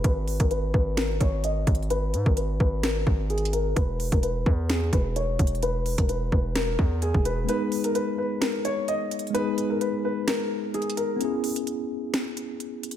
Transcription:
0.04 0.39 G#1 loud
0.04 0.38 B4 loud
0.04 kick loud
0.04 closed hi-hat medium
0.28 closed hi-hat soft
0.28 open hi-hat medium
0.40 0.73 G#1 loud
0.40 0.50 A#4 medium
0.40 kick loud
0.40 closed hi-hat medium
0.51 0.73 B4 medium
0.51 closed hi-hat medium
0.74 1.19 G#1 loud
0.74 0.96 B4 medium
0.74 kick medium
0.97 1.19 A#4 medium
0.97 snare loud
0.97 closed hi-hat medium
1.21 1.65 G#1 loud
1.21 1.42 C#5 medium
1.21 kick medium
1.21 closed hi-hat medium
1.44 1.88 D#5 medium
1.44 closed hi-hat medium
1.67 2.15 G#1 loud
1.67 kick loud
1.67 closed hi-hat medium
1.75 closed hi-hat medium
1.83 closed hi-hat soft
1.90 2.24 B4 loud
1.90 closed hi-hat medium
2.14 2.25 G#2 loud
2.14 closed hi-hat medium
2.26 2.59 G#1 loud
2.26 2.36 A#4 medium
2.26 kick medium
2.37 2.58 B4 medium
2.37 closed hi-hat medium
2.60 3.05 G#1 loud
2.60 2.82 B4 medium
2.60 kick medium
2.83 3.27 A#4 medium
2.83 snare loud
2.83 closed hi-hat medium
3.07 3.74 G#1 loud
3.07 kick medium
3.30 3.52 G#4 medium
3.30 closed hi-hat soft
3.38 closed hi-hat medium
3.45 closed hi-hat medium
3.53 3.75 A#4 medium
3.53 closed hi-hat medium
3.76 4.11 E1 loud
3.76 4.10 B4 loud
3.76 kick loud
3.76 closed hi-hat medium
4.00 closed hi-hat soft
4.00 open hi-hat medium
4.12 4.45 E1 loud
4.12 4.22 A#4 medium
4.12 kick loud
4.12 closed hi-hat medium
4.23 4.45 B4 medium
4.23 closed hi-hat medium
4.46 4.91 E2 loud
4.46 4.68 B4 medium
4.46 kick medium
4.69 4.91 G#4 medium
4.69 snare loud
4.69 closed hi-hat medium
4.93 5.37 E1 loud
4.93 5.15 B4 medium
4.93 kick medium
4.93 closed hi-hat medium
5.16 5.60 C#5 medium
5.16 closed hi-hat medium
5.39 5.96 E1 loud
5.39 kick loud
5.39 closed hi-hat medium
5.47 closed hi-hat medium
5.55 closed hi-hat soft
5.63 5.96 B4 loud
5.63 closed hi-hat medium
5.86 closed hi-hat soft
5.86 open hi-hat medium
5.98 6.31 E1 loud
5.98 6.08 A#4 medium
5.98 kick medium
5.98 closed hi-hat medium
6.09 6.31 B4 medium
6.09 closed hi-hat medium
6.32 6.77 E1 loud
6.32 6.54 B4 medium
6.32 kick medium
6.55 6.99 A#4 medium
6.55 snare loud
6.55 closed hi-hat medium
6.79 7.13 E2 loud
6.79 kick medium
7.02 7.24 G#4 medium
7.02 closed hi-hat medium
7.14 7.47 E1 loud
7.14 kick medium
7.25 7.47 B4 medium
7.25 closed hi-hat medium
7.44 9.29 G#3 medium
7.44 9.30 B3 medium
7.49 9.32 D#4 medium
7.49 9.33 G#4 medium
7.49 7.82 B4 loud
7.49 closed hi-hat medium
7.72 closed hi-hat soft
7.72 open hi-hat medium
7.84 7.94 A#4 medium
7.84 closed hi-hat medium
7.95 8.17 B4 medium
7.95 closed hi-hat medium
8.18 8.40 B4 medium
8.41 8.63 A#4 medium
8.41 snare loud
8.41 closed hi-hat medium
8.65 8.87 C#5 medium
8.65 closed hi-hat medium
8.88 9.32 D#5 medium
8.88 closed hi-hat medium
9.11 closed hi-hat medium
9.19 closed hi-hat medium
9.27 11.15 G#3 medium
9.27 closed hi-hat soft
9.33 11.15 B3 medium
9.33 11.18 D#4 medium
9.33 9.68 B4 loud
9.33 closed hi-hat medium
9.39 11.19 G#4 medium
9.58 closed hi-hat medium
9.70 9.80 A#4 medium
9.81 10.03 B4 medium
9.81 closed hi-hat medium
10.05 10.26 B4 medium
10.28 10.71 A#4 medium
10.28 snare loud
10.28 closed hi-hat medium
10.74 10.96 G#4 medium
10.74 closed hi-hat soft
10.82 closed hi-hat medium
10.90 closed hi-hat medium
10.97 11.19 A#4 medium
10.97 closed hi-hat medium
11.16 12.97 B3 medium
11.16 12.97 C#4 medium
11.21 12.97 E4 medium
11.21 12.97 G#4 medium
11.21 closed hi-hat medium
11.44 closed hi-hat soft
11.44 open hi-hat medium
11.56 closed hi-hat medium
11.67 closed hi-hat medium
12.14 snare loud
12.14 closed hi-hat medium
12.37 closed hi-hat medium
12.60 closed hi-hat medium
12.83 closed hi-hat medium
12.91 closed hi-hat medium

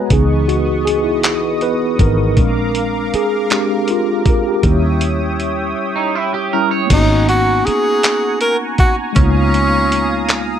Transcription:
0.00 0.12 G#3 soft
0.00 0.12 B3 soft
0.00 0.12 F#4 medium
0.00 0.12 B4 medium
0.00 0.13 C#5 loud
0.00 0.12 D#5 loud
0.09 1.95 C#2 medium
0.09 0.61 E3 soft
0.09 2.34 B3 medium
0.09 0.61 B3 soft
0.09 0.62 D#4 soft
0.09 0.50 G#4 medium
0.09 2.34 D#5 medium
0.09 2.34 C#6 medium
0.09 2.34 D#6 medium
0.09 kick loud
0.09 closed hi-hat medium
0.48 0.87 F#4 medium
0.48 closed hi-hat medium
0.85 1.05 G#4 medium
0.85 closed hi-hat medium
1.04 1.39 E4 medium
1.23 clap loud
1.23 closed hi-hat medium
1.61 1.79 B4 medium
1.61 closed hi-hat soft
1.99 2.38 G#1 medium
1.99 2.33 E3 soft
1.99 2.34 B3 soft
1.99 2.34 D#4 soft
1.99 3.17 A#4 medium
1.99 kick medium
1.99 closed hi-hat medium
2.37 3.09 A#1 medium
2.37 3.46 G#3 medium
2.37 3.46 C4 soft
2.37 3.47 D4 medium
2.37 4.61 A#4 medium
2.37 4.61 F5 medium
2.37 4.61 A#5 medium
2.37 4.61 D6 medium
2.37 kick medium
2.37 closed hi-hat medium
2.75 closed hi-hat medium
3.14 3.52 G#4 medium
3.14 muted fingered electric bass stroke soft
3.14 closed hi-hat medium
3.50 3.84 G#3 medium
3.50 3.85 C4 soft
3.50 3.85 D4 medium
3.50 3.90 G4 medium
3.50 clap loud
3.50 closed hi-hat medium
3.88 4.28 F4 medium
3.88 closed hi-hat medium
4.26 4.47 A#4 medium
4.26 kick medium
4.26 closed hi-hat medium
4.48 4.81 G4 medium
4.62 5.73 D#2 loud
4.62 5.14 G3 medium
4.62 6.87 C#5 medium
4.62 6.87 E5 medium
4.62 6.87 G5 medium
4.62 6.87 D#6 medium
4.62 kick medium
4.62 closed hi-hat medium
4.66 5.15 C#4 soft
4.66 5.15 E4 medium
5.01 closed hi-hat medium
5.40 closed hi-hat soft
5.96 6.15 D#4 medium
6.15 6.33 E4 medium
6.34 6.51 G4 medium
6.53 6.87 G3 soft
6.53 6.87 C#4 soft
6.53 6.87 E4 medium
6.53 6.70 A#4 medium
6.71 7.07 C#5 medium
6.86 9.10 A#3 medium
6.86 9.12 B3 medium
6.86 10.59 G#5 medium
6.86 9.14 C#6 medium
6.86 crash loud
6.90 7.62 G#1 loud
6.90 9.13 C#4 soft
6.90 9.14 D#4 medium
6.90 7.27 D#4 loud
6.90 9.14 F#5 medium
6.90 10.59 A#5 medium
6.90 kick loud
6.90 closed hi-hat medium
6.96 9.15 F#4 medium
7.29 7.67 F#4 loud
7.29 closed hi-hat medium
7.66 8.40 G#4 loud
7.66 muted fingered electric bass stroke soft
7.66 closed hi-hat medium
8.03 clap loud
8.03 closed hi-hat medium
8.41 8.57 A#4 loud
8.41 closed hi-hat medium
8.78 8.96 F#4 medium
8.78 kick medium
8.78 closed hi-hat medium
9.13 10.59 G#3 medium
9.13 10.59 A#3 medium
9.13 10.59 C#4 loud
9.13 10.59 F5 medium
9.13 10.59 D#6 loud
9.13 kick loud
9.13 closed hi-hat medium
9.17 10.59 C#2 loud
9.17 10.59 B3 medium
9.17 10.59 D#4 medium
9.22 10.59 F4 medium
9.54 closed hi-hat medium
9.92 closed hi-hat medium
10.29 clap loud
10.29 closed hi-hat medium

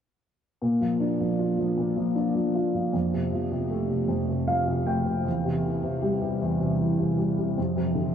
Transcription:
0.62 1.76 A#2 soft
0.81 1.19 F3 soft
1.00 2.14 D4 soft
1.20 1.57 F3 soft
1.39 2.53 F4 soft
1.59 1.95 F3 soft
1.77 2.90 A#2 soft
1.96 2.33 F3 soft
2.16 2.91 D4 soft
2.35 2.73 F3 soft
2.55 2.92 F4 soft
2.74 2.93 F3 soft
2.93 4.07 F2 soft
3.13 3.50 C3 soft
3.32 4.46 F3 soft
3.51 3.87 C3 soft
3.70 4.85 A3 soft
3.89 4.27 C3 soft
4.08 5.21 F2 soft
4.28 4.65 C3 soft
4.47 5.23 F3 soft
4.47 4.84 F5 medium
4.67 5.04 C3 soft
4.87 5.24 A3 soft
4.87 5.23 G5 medium
5.05 5.24 C3 soft
5.24 6.40 E2 medium
5.44 5.82 C3 soft
5.64 6.79 E3 soft
5.84 6.20 C3 soft
6.02 7.17 G3 soft
6.21 6.59 C3 soft
6.41 7.54 E2 medium
6.60 6.97 C3 soft
6.80 7.55 E3 soft
6.99 7.36 C3 soft
7.18 7.56 G3 soft
7.38 7.57 C3 soft
7.58 8.15 F2 soft
7.76 8.12 C3 soft
7.95 8.15 D3 soft

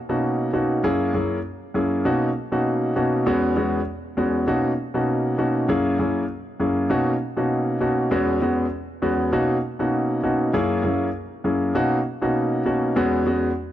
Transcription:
0.09 0.50 B2 medium
0.09 0.50 A#3 medium
0.09 0.50 C#4 medium
0.09 0.50 D#4 medium
0.09 0.50 F#4 medium
0.53 0.82 B2 medium
0.53 0.82 A#3 medium
0.53 0.82 C#4 medium
0.53 0.82 D#4 medium
0.53 0.82 F#4 medium
0.84 1.12 F#2 medium
0.84 1.12 A#3 medium
0.84 1.12 C#4 medium
0.84 1.12 E4 medium
0.84 1.12 G#4 loud
1.14 1.37 F#2 medium
1.14 1.37 A#3 medium
1.14 1.37 C#4 medium
1.14 1.37 E4 medium
1.14 1.37 G#4 medium
1.74 2.03 F#2 medium
1.74 2.03 A#3 medium
1.74 2.03 C#4 medium
1.74 2.03 E4 medium
1.74 2.03 G#4 medium
2.05 2.28 B2 medium
2.05 2.28 A#3 medium
2.05 2.28 C#4 medium
2.05 2.28 D#4 medium
2.05 2.28 F#4 medium
2.52 2.93 B2 medium
2.52 2.93 A#3 medium
2.52 2.93 C#4 medium
2.52 2.93 D#4 medium
2.52 2.93 F#4 medium
2.96 3.24 B2 medium
2.96 3.24 A#3 medium
2.96 3.24 C#4 medium
2.96 3.24 D#4 medium
2.96 3.24 F#4 medium
3.26 3.55 E2 medium
3.26 3.55 G#3 medium
3.26 3.55 B3 medium
3.26 3.55 C#4 medium
3.26 3.55 F#4 loud
3.56 3.79 E2 medium
3.56 3.79 G#3 medium
3.56 3.79 B3 medium
3.56 3.80 C#4 medium
3.56 3.80 F#4 medium
4.17 4.45 E2 medium
4.17 4.45 G#3 medium
4.17 4.46 B3 medium
4.17 4.46 C#4 medium
4.17 4.46 F#4 medium
4.47 4.70 B2 medium
4.47 4.70 A#3 medium
4.47 4.70 C#4 medium
4.47 4.70 D#4 medium
4.47 4.71 F#4 loud
4.94 5.35 B2 medium
4.94 5.35 A#3 medium
4.94 5.35 C#4 medium
4.94 5.35 D#4 medium
4.94 5.35 F#4 medium
5.38 5.67 B2 medium
5.38 5.67 A#3 medium
5.38 5.67 C#4 medium
5.38 5.67 D#4 medium
5.38 5.67 F#4 medium
5.69 5.97 F#2 medium
5.69 5.97 A#3 medium
5.69 5.97 C#4 medium
5.69 5.97 E4 medium
5.69 5.97 G#4 loud
5.99 6.22 F#2 medium
5.99 6.22 A#3 medium
5.99 6.22 C#4 medium
5.99 6.22 E4 medium
5.99 6.22 G#4 medium
6.60 6.88 F#2 medium
6.60 6.88 A#3 medium
6.60 6.88 C#4 medium
6.60 6.88 E4 medium
6.60 6.88 G#4 medium
6.90 7.13 B2 medium
6.90 7.13 A#3 medium
6.90 7.13 C#4 medium
6.90 7.13 D#4 medium
6.90 7.13 F#4 loud
7.37 7.78 B2 medium
7.37 7.78 A#3 medium
7.37 7.78 C#4 medium
7.37 7.78 D#4 medium
7.37 7.78 F#4 medium
7.81 8.09 B2 medium
7.81 8.09 A#3 medium
7.81 8.09 C#4 medium
7.81 8.09 D#4 medium
7.81 8.09 F#4 medium
8.11 8.39 E2 loud
8.11 8.40 G#3 medium
8.11 8.39 B3 medium
8.11 8.40 C#4 medium
8.11 8.40 F#4 loud
8.42 8.64 E2 medium
8.42 8.64 G#3 medium
8.42 8.65 B3 medium
8.42 8.65 C#4 medium
8.42 8.65 F#4 medium
9.02 9.30 E2 medium
9.02 9.30 G#3 medium
9.02 9.30 B3 medium
9.02 9.30 C#4 medium
9.02 9.31 F#4 medium
9.32 9.55 B2 medium
9.32 9.55 A#3 medium
9.32 9.55 C#4 medium
9.32 9.55 D#4 medium
9.32 9.56 F#4 loud
9.79 10.20 B2 medium
9.79 10.20 A#3 medium
9.79 10.20 C#4 medium
9.79 10.20 D#4 medium
9.79 10.20 F#4 medium
10.23 10.51 B2 medium
10.23 10.52 A#3 medium
10.23 10.52 C#4 medium
10.23 10.52 D#4 medium
10.23 10.52 F#4 medium
10.54 10.82 F#2 medium
10.54 10.82 A#3 medium
10.54 10.82 C#4 medium
10.54 10.82 E4 medium
10.54 10.82 G#4 loud
10.84 11.07 F#2 medium
10.84 11.07 A#3 medium
10.84 11.07 C#4 medium
10.84 11.07 E4 medium
10.84 11.07 G#4 medium
11.44 11.73 F#2 medium
11.44 11.73 A#3 medium
11.44 11.73 C#4 medium
11.44 11.73 E4 medium
11.44 11.73 G#4 medium
11.75 11.98 B2 medium
11.75 11.98 A#3 medium
11.75 11.98 C#4 medium
11.75 11.98 D#4 medium
11.75 11.98 F#4 loud
12.22 12.62 B2 medium
12.22 12.63 A#3 medium
12.22 12.63 C#4 medium
12.22 12.63 D#4 medium
12.22 12.63 F#4 medium
12.65 12.94 B2 medium
12.65 12.94 A#3 medium
12.65 12.94 C#4 medium
12.65 12.94 D#4 medium
12.65 12.94 F#4 medium
12.96 13.24 E2 medium
12.96 13.24 G#3 medium
12.96 13.24 B3 medium
12.96 13.25 C#4 medium
12.96 13.25 F#4 loud
13.26 13.49 E2 medium
13.26 13.49 G#3 medium
13.26 13.49 B3 medium
13.26 13.49 C#4 medium
13.26 13.49 F#4 medium

